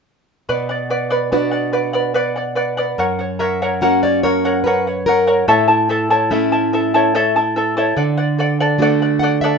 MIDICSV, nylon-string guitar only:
0, 0, Header, 1, 2, 480
1, 0, Start_track
1, 0, Key_signature, 2, "minor"
1, 0, Tempo, 829876
1, 288, Time_signature, 3, 2, 24, 8
1, 5541, End_track
2, 0, Start_track
2, 0, Title_t, "Nylon-string guitar"
2, 0, Program_c, 0, 24
2, 284, Note_on_c, 0, 47, 48
2, 766, Note_on_c, 0, 59, 39
2, 766, Note_on_c, 0, 62, 36
2, 768, Note_on_c, 0, 66, 46
2, 1233, Note_off_c, 0, 59, 0
2, 1233, Note_off_c, 0, 62, 0
2, 1234, Note_off_c, 0, 66, 0
2, 1704, Note_off_c, 0, 47, 0
2, 1725, Note_on_c, 0, 42, 56
2, 1966, Note_on_c, 0, 76, 50
2, 2191, Note_off_c, 0, 76, 0
2, 2204, Note_on_c, 0, 58, 39
2, 2208, Note_on_c, 0, 61, 36
2, 2209, Note_on_c, 0, 78, 58
2, 2212, Note_on_c, 0, 66, 43
2, 2320, Note_off_c, 0, 78, 0
2, 2331, Note_on_c, 0, 74, 53
2, 2442, Note_off_c, 0, 74, 0
2, 2449, Note_on_c, 0, 73, 59
2, 2672, Note_off_c, 0, 58, 0
2, 2672, Note_off_c, 0, 73, 0
2, 2675, Note_off_c, 0, 61, 0
2, 2676, Note_off_c, 0, 66, 0
2, 2683, Note_on_c, 0, 71, 54
2, 2909, Note_off_c, 0, 71, 0
2, 2928, Note_on_c, 0, 70, 54
2, 3144, Note_off_c, 0, 42, 0
2, 3151, Note_off_c, 0, 70, 0
2, 3169, Note_on_c, 0, 45, 57
2, 3647, Note_on_c, 0, 57, 42
2, 3650, Note_on_c, 0, 61, 39
2, 3650, Note_on_c, 0, 64, 44
2, 4113, Note_off_c, 0, 57, 0
2, 4113, Note_off_c, 0, 61, 0
2, 4114, Note_off_c, 0, 64, 0
2, 4583, Note_off_c, 0, 45, 0
2, 4608, Note_on_c, 0, 50, 56
2, 5081, Note_on_c, 0, 57, 41
2, 5085, Note_on_c, 0, 62, 40
2, 5085, Note_on_c, 0, 66, 48
2, 5318, Note_on_c, 0, 78, 56
2, 5432, Note_off_c, 0, 78, 0
2, 5444, Note_on_c, 0, 76, 53
2, 5541, Note_off_c, 0, 50, 0
2, 5541, Note_off_c, 0, 57, 0
2, 5541, Note_off_c, 0, 62, 0
2, 5541, Note_off_c, 0, 66, 0
2, 5541, Note_off_c, 0, 76, 0
2, 5541, End_track
0, 0, End_of_file